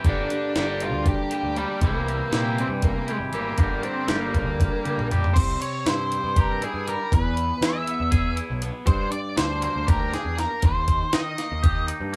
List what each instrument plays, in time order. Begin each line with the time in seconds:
Already playing: transistor combo organ G4
0.04 picked electric bass G1, clean electric guitar G2 D3 G3 A#3 D4 G4, transistor combo organ D5 A#5, kick, closed hi-hat
0.09 lead electric guitar D4
0.30 clean electric guitar G3 A#3 D4 G4, closed hi-hat
0.56 picked electric bass G1, clean electric guitar G2 D3 G3 A#3 D4 G4, snare, closed hi-hat
0.80 lead electric guitar F4, closed hi-hat
0.93 picked electric bass D2
1.06 lead electric guitar G4, kick, closed hi-hat
1.30 clean electric guitar G3 A#3 D4 G4, closed hi-hat
1.34 lead electric guitar G4
1.43 picked electric bass D2
1.55 clean electric guitar G3 A#3 D4 G4, lead electric guitar G3, closed hi-hat
1.81 picked electric bass C2, clean electric guitar C3 E3 G3 E4 G4, lead electric guitar A#3, transistor combo organ E5 C6, kick, closed hi-hat
2.06 clean electric guitar G3 E4 G4, closed hi-hat
2.32 picked electric bass A#2, clean electric guitar C3 E3 G3 E4 G4, lead electric guitar A#3, snare, closed hi-hat
2.58 lead electric guitar C4, closed hi-hat
2.69 picked electric bass G2
2.82 lead electric guitar A#3, kick, closed hi-hat
3.07 clean electric guitar G3 E4 G4, lead electric guitar G#3, closed hi-hat
3.20 picked electric bass G#1
3.32 clean electric guitar E3 G3 E4 G4, lead electric guitar A#3, closed hi-hat
3.57 picked electric bass G1, clean electric guitar G2 D3 G3 A#3 D4 G4, transistor combo organ G4 D5 A#5, kick, closed hi-hat
3.82 clean electric guitar G3 A#3 D4 G4, lead electric guitar C4, closed hi-hat
4.07 picked electric bass G1, clean electric guitar G2 D3 G3 A#3 D4 G4, lead electric guitar A#3, snare, closed hi-hat
4.34 kick, closed hi-hat
4.46 picked electric bass D2
4.60 kick, closed hi-hat, high tom
4.84 clean electric guitar G3 A#3 D4 G4, closed hi-hat, mid tom
4.98 picked electric bass A#1, mid tom
5.10 clean electric guitar G3 A#3 D4 G4, closed hi-hat, floor tom
5.24 floor tom
5.34 picked electric bass C2, clean electric guitar C3, lead electric guitar C5, kick, closed hi-hat, crash
5.62 lead electric guitar C#5, closed hi-hat
5.85 picked electric bass G2, clean electric guitar E4, lead electric guitar C5, snare, closed hi-hat
6.12 clean electric guitar G3, closed hi-hat
6.24 picked electric bass G2
6.36 clean electric guitar G4, lead electric guitar A#4, kick, closed hi-hat
6.62 clean electric guitar E4, lead electric guitar G#4, closed hi-hat
6.74 picked electric bass G2
6.88 clean electric guitar G3, lead electric guitar A#4, closed hi-hat
7.12 clean electric guitar E2, picked electric bass E2, lead electric guitar B4, kick, closed hi-hat
7.37 closed hi-hat
7.61 picked electric bass E3, clean electric guitar E4, lead electric guitar E5, snare, closed hi-hat
7.87 clean electric guitar B3, closed hi-hat
8.00 picked electric bass E2
8.11 clean electric guitar G#4, kick, closed hi-hat
8.36 clean electric guitar E4, closed hi-hat
8.50 picked electric bass B1
8.62 clean electric guitar B3, closed hi-hat
8.86 clean electric guitar G2, picked electric bass G2, lead electric guitar C5, kick, closed hi-hat
9.12 lead electric guitar D5, closed hi-hat
9.37 picked electric bass D2, clean electric guitar D4, lead electric guitar C5, snare, closed hi-hat
9.61 clean electric guitar A#3, lead electric guitar C5, closed hi-hat
9.76 picked electric bass D2
9.87 clean electric guitar G4, lead electric guitar A#4, kick, closed hi-hat
10.10 clean electric guitar D4, snare, closed hi-hat
10.14 lead electric guitar G#4
10.25 picked electric bass E2
10.37 clean electric guitar A#3, lead electric guitar A#4, snare, closed hi-hat
10.62 picked electric bass D#2, clean electric guitar D#3, lead electric guitar C5, kick, closed hi-hat
10.88 kick, closed hi-hat
11.13 picked electric bass D#3, clean electric guitar D#4, lead electric guitar D#5, snare, closed hi-hat
11.38 clean electric guitar A#3, snare, closed hi-hat
11.52 picked electric bass D#2
11.63 clean electric guitar G4, kick, closed hi-hat
11.87 clean electric guitar D#4, closed hi-hat
12.00 picked electric bass G2
12.13 clean electric guitar A#3